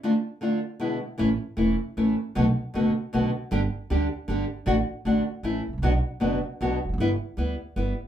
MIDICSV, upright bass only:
0, 0, Header, 1, 2, 480
1, 0, Start_track
1, 0, Tempo, 385852
1, 44, Time_signature, 3, 2, 24, 8
1, 10048, End_track
2, 0, Start_track
2, 0, Title_t, "Upright bass"
2, 0, Program_c, 0, 32
2, 1484, Note_on_c, 0, 33, 81
2, 1689, Note_off_c, 0, 33, 0
2, 1955, Note_on_c, 0, 28, 55
2, 2165, Note_off_c, 0, 28, 0
2, 2449, Note_on_c, 0, 33, 53
2, 2655, Note_off_c, 0, 33, 0
2, 2936, Note_on_c, 0, 35, 84
2, 3136, Note_off_c, 0, 35, 0
2, 3417, Note_on_c, 0, 30, 58
2, 3615, Note_off_c, 0, 30, 0
2, 3905, Note_on_c, 0, 35, 60
2, 4097, Note_off_c, 0, 35, 0
2, 4373, Note_on_c, 0, 31, 85
2, 4569, Note_off_c, 0, 31, 0
2, 4858, Note_on_c, 0, 38, 61
2, 5048, Note_off_c, 0, 38, 0
2, 5325, Note_on_c, 0, 31, 61
2, 5518, Note_off_c, 0, 31, 0
2, 5802, Note_on_c, 0, 33, 85
2, 5996, Note_off_c, 0, 33, 0
2, 6283, Note_on_c, 0, 33, 58
2, 6477, Note_off_c, 0, 33, 0
2, 6756, Note_on_c, 0, 33, 51
2, 6957, Note_off_c, 0, 33, 0
2, 7059, Note_on_c, 0, 32, 45
2, 7117, Note_off_c, 0, 32, 0
2, 7128, Note_on_c, 0, 33, 52
2, 7179, Note_off_c, 0, 33, 0
2, 7186, Note_on_c, 0, 34, 63
2, 7234, Note_off_c, 0, 34, 0
2, 7241, Note_on_c, 0, 35, 80
2, 7443, Note_off_c, 0, 35, 0
2, 7734, Note_on_c, 0, 30, 54
2, 7933, Note_off_c, 0, 30, 0
2, 8220, Note_on_c, 0, 35, 55
2, 8417, Note_off_c, 0, 35, 0
2, 8519, Note_on_c, 0, 28, 50
2, 8565, Note_off_c, 0, 28, 0
2, 8573, Note_on_c, 0, 29, 56
2, 8619, Note_off_c, 0, 29, 0
2, 8626, Note_on_c, 0, 30, 73
2, 8676, Note_off_c, 0, 30, 0
2, 8683, Note_on_c, 0, 31, 84
2, 8888, Note_off_c, 0, 31, 0
2, 9172, Note_on_c, 0, 38, 56
2, 9371, Note_off_c, 0, 38, 0
2, 9653, Note_on_c, 0, 31, 58
2, 9852, Note_off_c, 0, 31, 0
2, 10048, End_track
0, 0, End_of_file